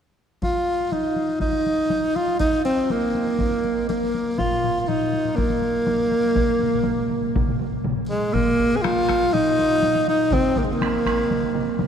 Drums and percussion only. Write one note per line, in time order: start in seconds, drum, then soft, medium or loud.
0.42 taiko medium
0.42 taiko high soft
0.55 taiko high soft
0.80 taiko high soft
0.92 taiko high medium
1.04 taiko high soft
1.16 taiko high soft
1.29 taiko high soft
1.40 taiko medium
1.40 taiko high medium
1.52 taiko high soft
1.66 taiko high soft
1.79 taiko high soft
1.90 taiko high medium
2.04 taiko high soft
2.16 taiko high soft
2.28 taiko high soft
2.40 taiko medium
2.40 taiko high soft
2.53 taiko high soft
2.65 taiko high soft
2.78 taiko high soft
2.90 taiko high medium
3.02 taiko high soft
3.15 taiko high soft
3.27 taiko high soft
3.39 taiko medium
3.39 taiko high medium
3.50 taiko high soft
3.64 taiko high soft
3.77 taiko high soft
3.90 taiko high medium
4.02 taiko high soft
4.14 taiko high soft
4.26 taiko high soft
4.38 taiko medium
4.38 taiko low-mid medium
4.38 taiko high soft
4.51 taiko low-mid medium
4.51 taiko high soft
4.63 taiko low-mid medium
4.63 taiko high soft
4.76 taiko high soft
4.88 taiko low-mid medium
4.88 taiko high soft
5.00 taiko low-mid medium
5.00 taiko high soft
5.12 taiko low-mid medium
5.12 taiko high soft
5.25 taiko low-mid medium
5.25 taiko high soft
5.38 taiko medium
5.38 taiko high medium
5.50 taiko high soft
5.62 taiko high soft
5.74 taiko high soft
5.87 taiko low-mid medium
5.87 taiko high medium
6.00 taiko high soft
6.12 taiko high soft
6.24 taiko high soft
6.35 taiko medium
6.35 taiko low-mid medium
6.35 taiko mid medium
6.35 taiko high medium
6.47 taiko high soft
6.59 taiko low-mid medium
6.59 taiko mid medium
6.59 taiko high soft
6.72 taiko low-mid medium
6.72 taiko mid medium
6.72 taiko high soft
6.83 taiko low-mid medium
6.83 taiko mid medium
6.83 taiko high medium
6.99 taiko low-mid medium
6.99 taiko mid medium
7.10 taiko low-mid medium
7.10 taiko mid medium
7.10 taiko high soft
7.22 taiko low-mid medium
7.22 taiko mid medium
7.22 taiko high soft
7.35 taiko medium
7.35 taiko low-mid medium
7.35 taiko mid medium
7.35 taiko high medium
7.48 taiko low-mid medium
7.48 taiko mid medium
7.48 taiko high soft
7.60 taiko low-mid medium
7.60 taiko mid medium
7.60 taiko high soft
7.73 taiko high soft
7.84 taiko low-mid medium
7.84 taiko mid medium
7.84 taiko high medium
7.99 taiko high soft
8.11 taiko high soft
8.24 taiko high soft
8.34 taiko medium
8.34 taiko low-mid medium
8.34 taiko high medium
8.48 taiko high soft
8.59 taiko medium
8.59 taiko low-mid medium
8.72 taiko low-mid medium
8.72 taiko high soft
8.84 taiko rim medium
8.84 taiko high medium
8.97 taiko high soft
9.09 taiko rim medium
9.09 taiko medium
9.09 taiko high medium
9.22 taiko high soft
9.34 taiko low-mid medium
9.34 taiko high medium
9.46 taiko low-mid medium
9.46 taiko high soft
9.59 taiko low-mid medium
9.59 taiko high soft
9.71 taiko high soft
9.83 taiko low-mid medium
9.83 taiko high medium
9.95 taiko high soft
10.08 taiko high soft
10.20 taiko high soft
10.32 taiko loud
10.32 taiko mid medium
10.32 taiko high medium
10.45 taiko high soft
10.56 taiko medium
10.56 taiko mid medium
10.56 taiko high soft
10.70 taiko mid medium
10.70 taiko high soft
10.81 taiko rim medium
10.81 taiko high medium
10.94 taiko high soft
11.05 taiko rim medium
11.05 taiko medium
11.05 taiko high medium
11.18 taiko high soft
11.31 taiko mid medium
11.31 taiko high medium
11.43 taiko mid medium
11.55 taiko mid medium
11.55 taiko high medium
11.67 taiko high soft
11.79 taiko mid medium
11.79 taiko high medium